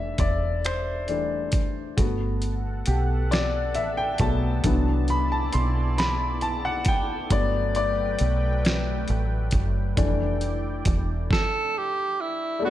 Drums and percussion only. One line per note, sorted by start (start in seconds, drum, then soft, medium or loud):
0.18 kick medium
0.18 closed hi-hat medium
0.65 finger snap loud
0.65 closed hi-hat medium
1.08 closed hi-hat soft
1.52 kick medium
1.52 closed hi-hat medium
1.98 kick loud
1.98 closed hi-hat medium
2.42 closed hi-hat medium
2.86 closed hi-hat medium
3.32 snare medium
3.32 closed hi-hat medium
3.75 closed hi-hat medium
4.18 kick medium
4.18 closed hi-hat medium
4.64 kick loud
4.64 closed hi-hat medium
5.08 closed hi-hat medium
5.53 closed hi-hat medium
5.98 snare medium
5.98 closed hi-hat medium
6.41 closed hi-hat soft
6.85 kick loud
6.85 closed hi-hat medium
7.30 kick loud
7.30 closed hi-hat medium
7.75 closed hi-hat medium
8.19 closed hi-hat medium
8.65 snare loud
8.65 closed hi-hat medium
9.08 closed hi-hat soft
9.51 kick medium
9.51 closed hi-hat medium
9.97 kick loud
9.97 closed hi-hat medium
10.41 closed hi-hat medium
10.85 kick medium
10.85 closed hi-hat medium
11.31 kick loud
11.31 snare medium